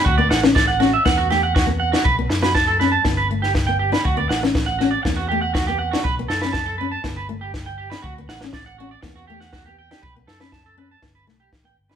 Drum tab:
SD |--ooo-o-o-o-o--o|--ooo-o-o--oo--o|--ooo-o-o---o--o|--ooo---o---o--o|
BD |o---o---o---o---|o---o---o---o---|o---o---o---o---|o---o---o---o---|

SD |--ooo---o--oo--o|--ooo---o-o-o--o|
BD |o---o---o---o---|o---o---o---o---|